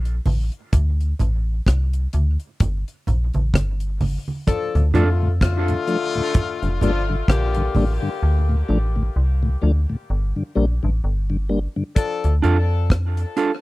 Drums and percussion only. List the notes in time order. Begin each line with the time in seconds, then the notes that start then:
0.05 closed hi-hat
0.26 open hi-hat, high conga, low conga
0.52 closed hi-hat
0.73 kick, closed hi-hat, low conga
1.00 closed hi-hat
1.19 closed hi-hat, low conga
1.67 kick, cross-stick, closed hi-hat
1.93 closed hi-hat
2.13 closed hi-hat, high conga
2.40 closed hi-hat
2.60 kick, closed hi-hat, low conga
2.88 closed hi-hat
3.07 closed hi-hat, low conga
3.34 closed hi-hat, high conga
3.54 kick, cross-stick, closed hi-hat, high conga
3.80 closed hi-hat
4.01 open hi-hat, high conga, low conga
4.28 high conga
4.47 kick, closed hi-hat, low conga
4.75 closed hi-hat
4.94 closed hi-hat, low conga
5.41 kick, cross-stick, closed hi-hat, high conga
5.68 closed hi-hat
5.88 closed hi-hat
6.14 closed hi-hat
6.34 kick, closed hi-hat, low conga
6.63 closed hi-hat
6.81 closed hi-hat, low conga
7.28 kick, cross-stick, closed hi-hat, high conga
7.54 closed hi-hat
7.75 open hi-hat, high conga, low conga
11.96 kick, closed hi-hat
12.24 closed hi-hat
12.44 closed hi-hat
12.90 kick, cross-stick, closed hi-hat
13.17 closed hi-hat
13.37 closed hi-hat